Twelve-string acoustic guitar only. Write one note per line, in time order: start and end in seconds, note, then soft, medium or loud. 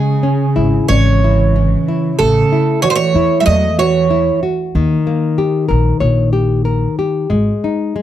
0.00 0.88 G#4 medium
0.88 2.15 C#5 medium
2.19 2.82 A4 medium
2.82 2.89 C#5 medium
2.90 2.95 C5 medium
2.96 3.40 C#5 loud
3.40 3.45 E5 medium
3.46 3.79 D#5 medium
3.79 4.39 C#5 medium